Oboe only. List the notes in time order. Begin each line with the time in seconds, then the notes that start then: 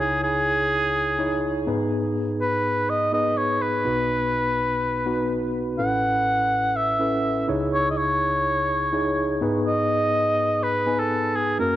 0.00 G#4
0.23 G#4
2.41 B4
2.90 D#5
3.14 D#5
3.37 C#5
3.61 B4
5.79 F#5
6.76 E5
7.73 C#5
7.90 D#5
7.97 C#5
9.66 D#5
10.63 B4
10.99 A4
11.36 G#4
11.60 A#4